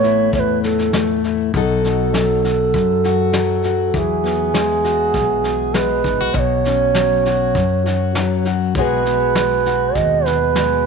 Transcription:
0.00 0.29 A1 medium
0.00 0.32 A2 medium
0.00 0.93 A3 medium
0.00 1.56 B3 medium
0.00 0.33 C#5 loud
0.00 snare soft
0.04 1.24 E4 medium
0.33 1.49 E2 medium
0.33 1.50 A2 medium
0.33 0.41 C#5 medium
0.33 kick medium
0.33 snare soft
0.40 0.62 B4 medium
0.63 1.23 A4 medium
0.63 1.51 A4 medium
0.63 snare soft
0.78 snare soft
0.93 1.50 A3 medium
0.93 snare medium
1.24 1.51 E4 medium
1.24 snare soft
1.54 2.70 B1 medium
1.54 2.75 B2 medium
1.54 2.13 F#3 medium
1.54 1.84 D#4 medium
1.54 2.44 F#4 medium
1.54 3.94 A4 medium
1.54 3.05 A4 medium
1.54 kick medium
1.54 snare soft
1.84 3.91 D#4 medium
1.84 snare soft
2.14 3.34 F#3 medium
2.14 snare medium
2.44 3.06 F#4 medium
2.44 snare soft
2.74 3.90 F#2 medium
2.74 3.95 F#2 medium
2.74 kick medium
2.74 snare soft
3.04 3.65 F#4 medium
3.04 snare soft
3.33 4.53 F#3 medium
3.33 snare medium
3.63 3.97 F#4 medium
3.63 snare soft
3.94 5.11 E2 medium
3.94 6.31 E3 medium
3.94 3.99 A4 medium
3.94 kick medium
3.94 snare soft
3.98 5.76 G#4 medium
4.24 6.67 B3 medium
4.24 snare soft
4.54 5.74 G#3 medium
4.54 snare medium
4.84 6.05 F#4 medium
4.84 snare soft
5.14 6.01 B1 medium
5.14 6.32 B2 medium
5.14 kick medium
5.14 snare soft
5.44 6.32 G#4 soft
5.44 snare soft
5.74 6.32 G#3 medium
5.74 6.36 B4 medium
5.74 snare medium
6.04 6.18 G#1 medium
6.04 6.21 D#4 medium
6.04 kick medium
6.04 snare soft
6.20 6.33 B1 medium
6.20 6.35 F#4 soft
6.34 7.51 B1 medium
6.34 7.56 B2 medium
6.34 6.40 D#5 medium
6.34 kick medium
6.34 snare soft
6.39 8.49 C#5 medium
6.65 8.73 C#4 medium
6.65 snare soft
6.94 8.15 F#3 medium
6.94 snare medium
7.25 7.85 F#4 medium
7.25 snare soft
7.55 8.72 F#2 medium
7.55 8.76 F#2 medium
7.55 kick medium
7.55 snare soft
7.85 8.46 F#4 medium
7.85 snare soft
8.15 8.76 F#3 medium
8.15 snare medium
8.45 8.73 F#4 medium
8.45 snare soft
8.75 9.92 B1 medium
8.75 9.94 B2 medium
8.75 9.37 G#3 medium
8.75 9.06 B3 medium
8.75 9.66 F#4 medium
8.75 8.82 C#5 medium
8.75 kick medium
8.75 snare soft
8.80 10.24 G#4 medium
8.80 9.97 B4 medium
9.05 10.86 B3 medium
9.05 snare soft
9.35 10.54 G#3 medium
9.35 snare medium
9.65 10.86 F#4 medium
9.65 snare soft
9.95 10.86 D#2 medium
9.95 10.86 B2 medium
9.95 10.28 D#5 medium
9.95 kick medium
9.95 snare soft
10.25 10.86 G#4 soft
10.25 10.86 B4 medium
10.25 snare soft
10.55 10.86 G#3 medium
10.55 snare medium

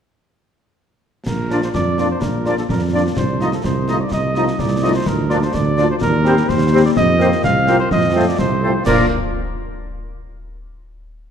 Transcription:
1.27 1.66 A#1 medium
1.27 1.60 A#4 medium
1.27 concert bass drum medium
1.27 snare medium
1.27 crash soft
1.50 1.59 F3 medium
1.50 1.60 A#3 medium
1.50 1.58 D4 medium
1.50 1.60 D4 medium
1.50 1.59 F4 soft
1.50 1.60 F4 soft
1.50 1.59 D5 soft
1.50 snare soft
1.62 1.68 C5 medium
1.62 snare soft
1.74 2.14 F2 medium
1.74 2.07 D5 medium
1.74 concert bass drum medium
1.74 snare medium
1.98 2.06 F3 soft
1.98 2.07 A#3 soft
1.98 2.07 D4 medium
1.98 2.07 D4 soft
1.98 2.07 F4 soft
1.98 2.07 D5 soft
1.98 snare medium
2.10 2.23 C5 medium
2.22 2.61 A#1 medium
2.22 2.57 A#4 medium
2.22 concert bass drum medium
2.22 snare medium
2.46 2.54 F3 medium
2.46 2.55 A#3 soft
2.46 2.54 D4 medium
2.46 2.55 D4 soft
2.46 2.54 F4 soft
2.46 2.54 D5 soft
2.46 snare soft
2.57 2.64 A4 medium
2.57 snare soft
2.69 3.09 F2 medium
2.69 2.81 A#4 medium
2.69 concert bass drum medium
2.69 snare medium
2.93 3.01 F3 soft
2.93 3.02 A#3 soft
2.93 3.01 D4 medium
2.93 3.02 D4 medium
2.93 3.01 F4 medium
2.93 3.02 F4 soft
2.93 3.01 D5 medium
2.93 3.04 D5 medium
3.17 3.56 C2 medium
3.17 3.55 C5 medium
3.17 concert bass drum medium
3.17 snare medium
3.40 3.49 F3 medium
3.40 3.49 A3 soft
3.40 3.49 D#4 soft
3.40 3.49 D#4 medium
3.40 3.49 F4 soft
3.40 3.49 D#5 soft
3.40 snare soft
3.52 3.64 A4 medium
3.52 snare medium
3.64 4.04 C2 medium
3.64 4.03 C5 medium
3.64 concert bass drum medium
3.64 snare medium
3.88 3.97 F3 medium
3.88 3.96 A3 medium
3.88 3.96 D#4 soft
3.88 3.97 D#4 medium
3.88 3.96 F4 soft
3.88 3.97 F4 soft
3.88 3.96 D#5 soft
3.88 snare soft
4.01 4.12 D5 medium
4.11 4.51 C2 medium
4.11 4.61 D#5 medium
4.11 concert bass drum medium
4.11 snare medium
4.34 4.44 F3 medium
4.34 4.45 A3 soft
4.34 4.44 D#4 medium
4.34 4.43 F4 soft
4.34 4.45 F4 medium
4.34 4.43 D#5 soft
4.34 snare soft
4.48 snare medium
4.59 4.99 C2 medium
4.59 4.95 D5 medium
4.59 concert bass drum medium
4.59 snare medium
4.82 4.91 F3 medium
4.82 4.92 A3 medium
4.82 4.91 D#4 medium
4.82 4.92 D#4 medium
4.82 4.91 F4 medium
4.82 4.92 F4 medium
4.82 4.91 D#5 soft
4.95 5.09 C5 medium
5.06 5.46 D2 medium
5.06 5.45 A#4 medium
5.06 concert bass drum medium
5.06 snare medium
5.06 crash soft
5.29 5.39 F3 medium
5.29 5.39 A#3 medium
5.29 5.38 D4 medium
5.29 5.39 D4 medium
5.29 5.38 F4 medium
5.29 5.39 F4 medium
5.29 5.38 D5 medium
5.29 snare medium
5.42 5.56 C5 medium
5.42 snare soft
5.54 5.93 D2 medium
5.54 5.90 D5 medium
5.54 concert bass drum medium
5.54 snare medium
5.77 5.85 F3 medium
5.77 5.86 A#3 medium
5.77 5.85 D4 medium
5.77 5.86 D4 medium
5.77 5.86 F4 medium
5.77 5.86 D5 medium
5.77 snare medium
5.91 5.96 C5 medium
6.01 6.41 D#2 medium
6.01 6.50 A#4 medium
6.01 concert bass drum medium
6.01 snare medium
6.24 6.33 G3 medium
6.24 6.34 A#3 medium
6.24 6.33 C4 medium
6.24 6.34 C4 medium
6.24 6.34 G4 medium
6.24 6.34 C5 medium
6.24 snare soft
6.37 snare medium
6.49 6.89 D#2 medium
6.49 6.84 C5 medium
6.49 concert bass drum medium
6.49 snare medium
6.72 6.80 G3 medium
6.72 6.81 A#3 medium
6.72 6.81 C4 medium
6.72 6.81 G4 medium
6.72 6.82 G4 medium
6.72 6.81 C5 medium
6.85 6.90 D5 medium
6.96 7.36 F2 medium
6.96 7.41 D#5 medium
6.96 concert bass drum medium
6.96 snare medium
7.19 7.28 A#3 medium
7.19 7.29 A#3 medium
7.19 7.28 C4 medium
7.19 7.29 C4 medium
7.19 7.29 F4 medium
7.19 7.28 A#4 medium
7.19 7.28 C5 medium
7.19 snare medium
7.32 snare soft
7.44 7.83 C2 medium
7.44 7.77 F5 medium
7.44 concert bass drum medium
7.44 snare medium
7.67 7.76 A#3 medium
7.67 7.77 A#3 medium
7.67 7.75 C4 medium
7.67 7.77 C4 medium
7.67 7.76 F4 medium
7.67 7.76 A#4 medium
7.67 7.76 C5 medium
7.67 snare medium
7.80 7.91 C5 medium
7.91 8.31 F2 medium
7.91 8.29 D#5 medium
7.91 concert bass drum medium
7.91 snare medium
8.14 8.23 A3 medium
8.14 8.25 A3 medium
8.14 8.23 C4 medium
8.14 8.25 C4 medium
8.14 8.25 F4 medium
8.14 8.24 A4 medium
8.14 8.24 C5 soft
8.28 8.39 D5 medium
8.38 8.78 C2 medium
8.38 8.83 C5 medium
8.38 concert bass drum medium
8.38 snare medium
8.62 8.71 A3 medium
8.62 8.71 A3 soft
8.62 8.71 C4 medium
8.62 8.71 F4 medium
8.62 8.71 A4 soft
8.62 8.71 C5 medium
8.85 9.06 A#2 medium
8.85 9.06 F3 medium
8.85 9.06 A#3 medium
8.85 9.06 D4 medium
8.85 9.06 F4 medium
8.85 9.06 A#4 medium
8.85 9.06 D5 medium
8.85 concert bass drum medium
8.85 snare medium
8.85 crash medium

